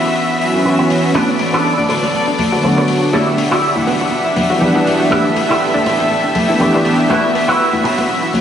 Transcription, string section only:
0.00 3.09 B3 medium
0.00 1.13 F#4 medium
0.00 1.13 E5 medium
1.14 3.11 A4 medium
1.14 3.11 D5 medium
3.13 5.09 G3 medium
3.13 5.09 D4 medium
3.13 8.41 E5 medium
3.13 5.09 F#5 medium
5.11 8.41 B3 medium
5.11 7.08 G4 medium
5.11 7.08 A4 medium
7.09 8.41 F#4 medium

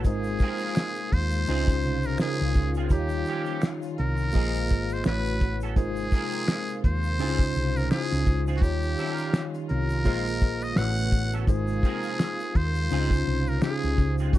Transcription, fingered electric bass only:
0.06 0.37 G#1 medium
1.13 1.45 D#2 medium
1.49 1.85 C#2 loud
1.85 2.16 C2 medium
2.41 2.54 C#2 medium
2.56 2.91 C#2 medium
2.91 3.23 D#2 medium
3.99 4.31 C2 medium
4.36 4.72 A#1 loud
4.72 5.03 G#1 medium
5.06 5.77 A1 loud
5.77 6.09 G#1 loud
6.85 7.20 D#2 medium
7.20 7.52 C#2 medium
7.56 7.88 C2 medium
8.12 8.25 C#2 medium
8.28 8.62 C#2 medium
8.62 8.94 D#2 loud
9.71 10.07 C2 medium
10.07 10.73 A#1 medium
10.78 11.44 A1 loud
11.48 11.80 G#1 loud
12.56 12.88 D#2 medium
12.92 13.23 C#2 loud
13.27 13.59 C2 medium
13.84 13.97 C#2 medium
13.99 14.30 C#2 medium
14.34 14.39 D#2 medium

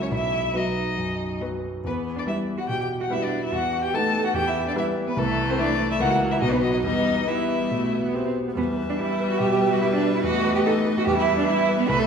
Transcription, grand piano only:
0.00 0.14 C#2 medium
0.00 0.14 F#3 soft
0.00 0.14 E4 soft
0.00 0.14 A#4 soft
0.11 0.53 B1 soft
0.55 0.94 F#3 soft
0.55 0.94 F#4 soft
0.55 0.95 B4 soft
0.98 1.40 F#2 soft
1.41 1.80 F#3 soft
1.41 1.81 F#4 soft
1.41 1.81 B4 soft
1.84 2.26 E2 soft
2.27 2.65 G3 soft
2.27 2.65 E4 soft
2.27 2.65 B4 soft
2.69 3.09 B2 soft
3.11 3.48 G3 soft
3.11 3.49 E4 soft
3.11 3.49 B4 soft
3.52 3.92 E2 soft
3.93 4.31 A3 soft
3.93 4.31 D#4 soft
3.93 4.32 B4 soft
4.34 4.74 E2 medium
4.76 5.13 G3 soft
4.76 5.13 E4 soft
4.76 5.14 B4 soft
5.17 5.57 C2 medium
5.58 5.96 A3 soft
5.58 5.96 E4 soft
5.58 5.96 E5 medium
5.99 6.40 C#2 medium
5.99 6.37 A#3 soft
5.99 6.38 F#4 soft
5.99 6.38 E5 soft
6.41 6.83 B1 medium
6.41 6.80 B3 soft
6.41 6.80 F#4 soft
6.41 6.81 B4 soft
6.83 7.26 E2 soft
7.27 7.67 B3 soft
7.27 7.67 G4 soft
7.27 7.67 B4 soft
7.71 8.13 B2 soft
8.13 8.53 B3 soft
8.13 8.53 G4 soft
8.13 8.53 B4 soft
8.56 9.38 E2 medium
8.77 9.12 B4 soft
8.99 9.33 G4 soft
9.20 9.54 B4 soft
9.40 9.74 B2 soft
9.61 9.95 B4 soft
9.82 10.15 G4 soft
10.02 10.24 B4 soft
10.24 11.04 E2 medium
10.45 10.78 B4 medium
10.66 10.99 D#4 soft
10.87 11.07 B4 medium
11.07 11.87 E2 medium
11.27 11.60 B4 soft
11.48 11.81 E4 medium
11.69 11.89 B4 medium
11.89 12.07 C2 medium

